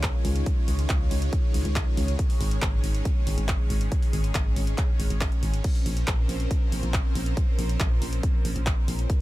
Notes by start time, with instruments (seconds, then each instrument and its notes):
Already playing: fm bass C#2, supersaw synth D#3 G#3 C#4 F4 C#5
0.03 kick, clap, closed hi-hat
0.25 fm bass C#2, open hi-hat
0.36 closed hi-hat
0.46 kick, closed hi-hat
0.68 fm bass C#2, open hi-hat
0.79 closed hi-hat
0.89 fm bass C#2, kick, clap, closed hi-hat
1.11 fm bass C#2, open hi-hat
1.22 closed hi-hat
1.33 kick, closed hi-hat
1.54 fm bass C#2, open hi-hat
1.65 fm bass C#2, closed hi-hat
1.76 kick, clap, closed hi-hat
1.97 fm bass C#2, open hi-hat
2.08 closed hi-hat
2.19 supersaw synth C#4 G#4, kick, closed hi-hat
2.30 open hi-hat
2.41 fm bass G#1, open hi-hat
2.51 closed hi-hat
2.62 fm bass G#1, kick, clap, closed hi-hat
2.84 fm bass G#1, open hi-hat
2.95 closed hi-hat
3.05 kick, closed hi-hat
3.27 fm bass G#1, open hi-hat
3.38 fm bass G#1, closed hi-hat
3.48 kick, clap, closed hi-hat
3.70 fm bass G#1, open hi-hat
3.81 closed hi-hat
3.92 kick, closed hi-hat
4.02 open hi-hat
4.13 fm bass G#1, open hi-hat
4.24 closed hi-hat
4.35 fm bass G#1, kick, clap, closed hi-hat
4.56 fm bass G#1, open hi-hat
4.67 closed hi-hat
4.78 kick, clap, closed hi-hat
5.00 fm bass G#1, open hi-hat
5.10 fm bass G#1, closed hi-hat
5.21 kick, clap, open hi-hat
5.32 closed hi-hat
5.43 fm bass G#1, open hi-hat
5.54 closed hi-hat
5.64 supersaw synth F3 C4 A#4 C5, kick, closed hi-hat, crash
5.75 open hi-hat
5.86 fm bass A#1, open hi-hat
5.97 closed hi-hat
6.07 fm bass A#1, kick, clap, closed hi-hat
6.29 fm bass A#1, open hi-hat
6.40 closed hi-hat
6.51 kick, closed hi-hat
6.72 fm bass A#1, open hi-hat
6.83 fm bass A#1, closed hi-hat
6.94 kick, clap, closed hi-hat
7.15 fm bass A#1, open hi-hat
7.26 closed hi-hat
7.37 kick, closed hi-hat
7.59 fm bass A#1, open hi-hat
7.69 closed hi-hat
7.80 fm bass A#1, kick, clap, closed hi-hat
8.02 fm bass A#1, open hi-hat
8.13 closed hi-hat
8.23 kick, closed hi-hat
8.45 fm bass A#1, open hi-hat
8.56 fm bass A#1, closed hi-hat
8.66 kick, clap, closed hi-hat
8.88 fm bass A#1, open hi-hat
8.99 closed hi-hat
9.10 supersaw synth F#3 A#3 C#4 A#4 C#5, kick, closed hi-hat